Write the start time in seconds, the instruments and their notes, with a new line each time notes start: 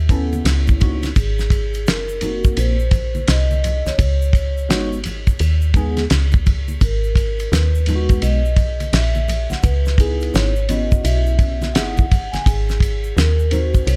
Already playing: fm bass D#2
0.09 tine electric piano B3 C#4 E4 A4, kick, ride, low conga, shaker
0.33 high conga, shaker
0.45 fm bass C#2, snare, hi-hat pedal, ride, shaker
0.67 kick, high conga, shaker
0.81 tine electric piano A#3 C4 D#4 F#4, kick, ride, low conga, shaker
1.03 snare, ride, high conga, shaker
1.16 fm bass G#1, vibraphone G#4, kick, ride, shaker
1.39 snare, shaker
1.50 vibraphone G#4, kick, ride, shaker
1.74 ride, shaker
1.86 fm bass F#1, vibraphone A#4, snare, hi-hat pedal, ride, shaker
2.09 shaker
2.21 tine electric piano A#3 C4 D#4 F#4, ride, low conga, shaker
2.44 kick, shaker
2.57 fm bass A#1, vibraphone C5, ride, shaker
2.79 shaker
2.91 kick, ride, low conga, shaker
3.15 high conga, shaker
3.28 fm bass C2, vibraphone D#5, snare, hi-hat pedal, ride, shaker
3.51 high conga, shaker
3.64 ride, low conga, shaker
3.86 fm bass C2, vibraphone C#5, snare, high conga, shaker
3.98 fm bass C#2, kick, ride, shaker
4.22 shaker
4.33 kick, ride, shaker
4.57 shaker
4.69 fm bass G#1, tine electric piano G#3 B3 D#4 F#4, snare, hi-hat pedal, ride, shaker
4.92 shaker
5.04 ride, low conga, shaker
5.27 kick, ride, shaker
5.39 fm bass D#2, ride, shaker
5.62 shaker
5.74 tine electric piano G#3 B3 D#4 G#4, kick, ride, low conga, shaker
5.97 snare, ride, high conga, shaker
6.10 fm bass C#2, snare, hi-hat pedal, ride, shaker
6.32 kick, high conga, shaker
6.46 kick, ride, low conga, shaker
6.68 high conga, shaker
6.81 fm bass G#1, vibraphone A#4, kick, ride, shaker
7.04 shaker
7.16 kick, ride, shaker
7.39 ride, shaker
7.52 fm bass D#2, snare, hi-hat pedal, ride, shaker
7.75 shaker
7.86 tine electric piano G#3 B3 D#4 F4, ride, low conga, shaker
7.96 tine electric piano F#4
8.09 kick, ride, shaker
8.22 fm bass B1, vibraphone D#5, ride, shaker
8.45 shaker
8.56 kick, ride, low conga, shaker
8.80 ride, high conga, shaker
8.93 fm bass A#1, vibraphone E5, snare, hi-hat pedal, ride, shaker
9.15 high conga, shaker
9.28 ride, low conga, shaker
9.50 fm bass A#1, vibraphone F#5, snare, high conga, shaker
9.63 fm bass C#2, vibraphone B4, kick, ride, shaker
9.86 snare, shaker
9.98 tine electric piano B3 D#4 E4 G#4, kick, ride, shaker
10.21 ride, shaker
10.34 fm bass G#1, vibraphone C#5, snare, hi-hat pedal, ride, shaker
10.56 shaker
10.69 tine electric piano B3 C#4 E4 F#4, vibraphone D#5, ride, low conga, shaker
10.92 kick, shaker
11.01 fm bass B1, vibraphone D#5 E5, ride
11.05 shaker
11.26 shaker
11.39 kick, ride, low conga, shaker
11.62 snare, high conga, shaker
11.74 fm bass G1, tine electric piano B3 D#4 E4 G#4, vibraphone F#5, snare, hi-hat pedal, ride, shaker
11.97 kick, high conga, shaker
12.11 kick, ride, low conga, shaker
12.32 fm bass G1, vibraphone G#5, snare, ride, high conga, shaker
12.46 fm bass G#1, vibraphone G#4, kick, ride, shaker
12.69 snare, shaker
12.80 kick, ride, shaker
13.04 shaker
13.16 fm bass D#2, vibraphone A#4, snare, hi-hat pedal, ride, shaker
13.39 shaker
13.51 tine electric piano C4 D#4 F#4 A#4, vibraphone C5, ride, low conga, shaker
13.74 kick, ride, shaker
13.86 fm bass C2, vibraphone C#5, ride, shaker